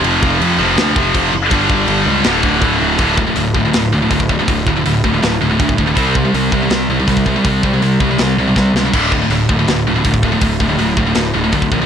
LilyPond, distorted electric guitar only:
\new Staff \with { instrumentName = "Distorted electric guitar" } { \clef bass \time 4/4 \key d \minor \tempo 4 = 162 <f, c f>4. <f, c f>2 r8 | <g, d g>2 <d, a, d>2 | <d, a, d>8 <d, a,>16 <d, a,>16 <d, a,>8 <d, a,>16 <d, a,>16 <d, a,>8 <d, a,>16 <d, a,>16 <d, a,>8 <d, a,>16 <d, a,>16 | <d, a,>8 <d, a,>16 <d, a,>16 <d, a,>8 <d, a,>16 <d, a,>16 <d, a,>8 <d, a,>16 <d, a,>16 <d, a,>8 <d, a,>16 <d, a,>16 |
<c g c'>8 <c g>16 <c g>16 <c g>8 <c g>16 <c g>16 <c g>8 <c g>16 <c g>16 <c g>8 <c g>16 <c g>16 | <c g>8 <c g>16 <c g>16 <c g>8 <c g>16 <c g>16 <c g>8 <c g>16 <c g>16 <c g>8 <c g>16 <c g>16 | <d, a, d>8 <d, a,>16 <d, a,>16 <d, a,>8 <d, a,>16 <d, a,>16 <d, a,>8 <d, a,>16 <d, a,>16 <d, a,>8 <d, a,>16 <d, a,>16 | <d, a,>8 <d, a,>16 <d, a,>16 <d, a,>8 <d, a,>16 <d, a,>16 <d, a,>8 <d, a,>16 <d, a,>16 <d, a,>8 <d, a,>16 <d, a,>16 | }